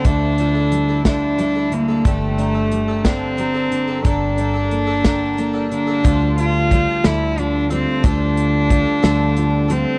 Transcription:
<<
  \new Staff \with { instrumentName = "Cello" } { \time 6/8 \key d \minor \tempo 4. = 60 d'4. d'4 bes8 | a4. c'4. | d'2~ d'8 d'8~ | d'8 f'4 e'8 d'8 c'8 |
d'2~ d'8 c'8 | }
  \new Staff \with { instrumentName = "Twelve-string acoustic guitar" } { \time 6/8 \key d \minor <d f d' e' a'>8 <f d' e' a'>16 <d' e' a'>8 <d' e' a'>16 <d f d' e' a'>8 <f d' e' a'>16 <d' e' a'>8 <d' e' a'>16 | <g, d g d' a'>8 <g bes d' a'>16 <g d' a'>8 <g bes d' a'>16 <g, d g bes d' a'>8 <g bes d' a'>16 <g bes d' a'>8 <g bes d' a'>16 | <g, d g bes d' a'>8 <g bes d' a'>16 <g bes d' a'>8 <g bes d' a'>16 <g, d g bes d' a'>8 <g bes d' a'>16 <g bes d' a'>8 <g bes d' a'>16 | <d f d' f' a'>4 <f d' f' a'>8 <d f d' a'>4 <d' f' a'>8 |
<d f d' f' a'>4 <f d' f' a'>8 <d f d' f' a'>4 <d' f' a'>8 | }
  \new Staff \with { instrumentName = "Steel-string acoustic guitar" } { \clef bass \time 6/8 \key d \minor << { a'8 f'8 g4 g4 | a'8 d'8 g4 g4 | a'8 d'8 bes4 bes4 | g4 g8 g8 f'8 g8 |
g4 a'8 g8 f'8 g8 | } \\ { <d, d>4. d4 d8 | g,4. d4 d8 | g,4. d4 d8 | d,4. d4. |
d,4. d4. | } >> }
  \new Staff \with { instrumentName = "Fingered electric bass" } { \clef bass \time 6/8 \key d \minor d,2. | g,,2. | g,,2. | d,4. d,4. |
d,4. d,4. | }
  \new DrumStaff \with { instrumentName = "Drums" } \drummode { \time 6/8 <hh bd>8 hh8 hh8 <hh bd sn>8 hh8 hh8 | <hh bd>8 hh8 hh8 <hh bd sn>8 hh8 hh8 | <hh bd>8 hh8 hh8 <hh bd sn>8 hh8 hh8 | <hh bd>8 hh8 <hh bd>8 <hh sn>8 hh8 hh8 |
<hh bd>8 hh8 <hh bd>8 <hh sn>8 hh8 hh8 | }
>>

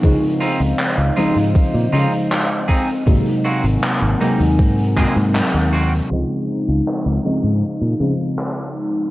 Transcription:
<<
  \new Staff \with { instrumentName = "Ambient pad" } { \time 4/4 \key des \major \tempo 4 = 79 <c'' ees'' f''>1 | <c' bes' ges'' aes''>1 | <c'' ees'' f''>1 | }
  \new Staff \with { instrumentName = "Clean electric guitar" } { \time 4/4 \key des \major r8 <c' ees' f'>16 r8. <c' ees' f'>16 r8. <c' ees' f'>16 r8. <c' ees' aes'>16 r16 | r8 <bes c' ges'>16 r8. <bes c' ees'>16 r8. <bes c' aes'>16 r8. <bes c' ges'>16 r16 | r1 | }
  \new Staff \with { instrumentName = "FM electric piano" } { \clef bass \time 4/4 \key des \major <des f aes c' ees'>4. <des f aes c' ees'>4 <des f aes c' ees'>4. | <c ges aes bes ees'>4. <c ges aes bes ees'>4 <c ges aes bes ees'>4. | <des f aes c' ees'>4. <des f aes c' ees'>4 <des f aes c' ees'>4. | }
  \new Staff \with { instrumentName = "Fingered electric bass" } { \clef bass \time 4/4 \key des \major des,16 r8 des,16 r16 des,16 r16 aes,16 r16 bes,16 des16 r4 r16 | aes,,16 r8 aes,,16 r16 aes,,16 r16 ees,16 aes,8 r16 aes,16 r16 ees,8 r16 | des,16 r8 des,16 r16 des,16 r16 aes,16 r16 bes,16 des16 r4 r16 | }
  \new DrumStaff \with { instrumentName = "Drums" } \drummode { \time 4/4 <hh bd>16 hh16 hh16 hh16 <hc hh>16 hh16 hh16 hh16 <hh bd>16 hh16 hh16 hh16 <hc hh>16 hh16 <hh bd>16 hh16 | <hh bd>16 hh16 hh16 hh16 <hc hh>16 hh16 hh16 hh16 <hh bd>16 hh16 <hc hh bd>16 hh16 <hc hh>16 hh16 hh16 hh16 | r4 hc4 r4 hc4 | }
>>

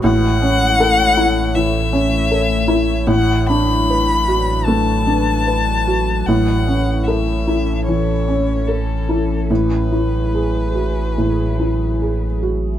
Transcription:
<<
  \new Staff \with { instrumentName = "Violin" } { \time 4/4 \key a \major \tempo 4 = 75 fis''2 e''2 | fis''8 b''4. a''2 | fis''4 e''4 cis''4 a'4 | b'2.~ b'8 r8 | }
  \new Staff \with { instrumentName = "Felt piano" } { \time 4/4 \key a \major a,8 cis'8 a'8 e'8 e8 cis'8 a'8 e'8 | a,8 d'8 b'8 fis'8 a8 d'8 b'8 fis'8 | a,8 cis'8 a'8 e'8 e8 cis'8 a'8 e'8 | a,8 e'8 gis'8 fis'8 a,8 e'8 gis'8 fis'8 | }
  \new Staff \with { instrumentName = "Ambient pad" } { \time 4/4 \key a \major <a e' cis''>1 | <fis d' b'>1 | <e cis' a'>1 | <fis e' gis'>1 | }
  \new Staff \with { instrumentName = "Sub bass" } { \clef bass \time 4/4 \key a \major a,,1~ | a,,1 | a,,1~ | a,,1 | }
>>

